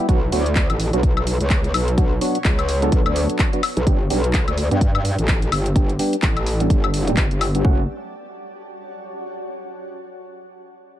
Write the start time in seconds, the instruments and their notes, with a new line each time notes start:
Already playing: ambient pad E4 B4 F#5
0.09 wobble bass B1, synth stab F#3 B3 D4 F#4, ambient pad B3, kick, closed hi-hat
0.24 ambient pad C#5
0.32 wobble bass D2, synth stab F#3 B3 D4 F#4, open hi-hat
0.46 ambient pad F#4, closed hi-hat
0.56 kick, clap, closed hi-hat
0.70 wobble bass A1, closed hi-hat, high woodblock
0.80 open hi-hat
0.93 wobble bass B1, synth stab F#3 B3 D4 F#4, closed hi-hat
1.03 kick, closed hi-hat
1.17 high woodblock
1.27 open hi-hat
1.41 wobble bass C#2, closed hi-hat
1.50 kick, clap, closed hi-hat
1.64 closed hi-hat
1.74 wobble bass B1, open hi-hat, high woodblock
1.88 closed hi-hat
1.98 synth stab F#3 B3 D4 F#4, kick, closed hi-hat
2.21 synth stab F#3 B3 D4 F#4, open hi-hat
2.35 closed hi-hat
2.45 wobble bass C#2, kick, clap, closed hi-hat
2.59 closed hi-hat, high woodblock
2.69 open hi-hat
2.82 synth stab F#3 B3 D4 A4, closed hi-hat
2.92 wobble bass B1, kick, closed hi-hat
3.06 wobble bass D2, high woodblock
3.16 open hi-hat
3.29 closed hi-hat
3.39 kick, clap, closed hi-hat
3.53 synth stab F#3 B3 D4 F#4, closed hi-hat
3.63 open hi-hat, high woodblock
3.77 wobble bass B1, closed hi-hat
3.87 wobble bass G1, synth stab G3 B3 D4 G4, ambient pad G4, kick, closed hi-hat
4.10 wobble bass B1, synth stab G3 B3 D4 G4, open hi-hat
4.24 closed hi-hat
4.29 ambient pad D5
4.34 kick, clap, closed hi-hat
4.48 wobble bass D2, closed hi-hat, high woodblock
4.58 open hi-hat
4.71 wobble bass G2, synth stab G3 B3 D4 G4, closed hi-hat
4.81 kick, closed hi-hat
4.95 high woodblock
4.99 ambient pad A5
5.05 open hi-hat
5.19 wobble bass A1, closed hi-hat
5.28 kick, clap, closed hi-hat
5.42 closed hi-hat
5.52 wobble bass G1, open hi-hat, high woodblock
5.66 closed hi-hat
5.76 synth stab G3 B3 D4 G4, kick, closed hi-hat
5.89 closed hi-hat
5.99 synth stab G3 B3 D4 G4, open hi-hat
6.13 closed hi-hat
6.22 wobble bass A1, kick, clap, closed hi-hat
6.37 closed hi-hat, high woodblock
6.46 open hi-hat
6.60 synth stab G3 B3 D4 A4, closed hi-hat
6.70 wobble bass G1, kick, closed hi-hat
6.84 high woodblock
6.94 open hi-hat
7.07 synth stab G3 B3 D4 G4, closed hi-hat
7.17 wobble bass G1, kick, clap, closed hi-hat
7.31 wobble bass G1, closed hi-hat
7.41 open hi-hat, high woodblock
7.55 synth stab G3 B3 D4 G4, closed hi-hat
7.65 wobble bass F#1, synth stab F#3 A3 C#4 F#4, ambient pad F#4, kick
7.73 ambient pad C#5
7.80 ambient pad F#5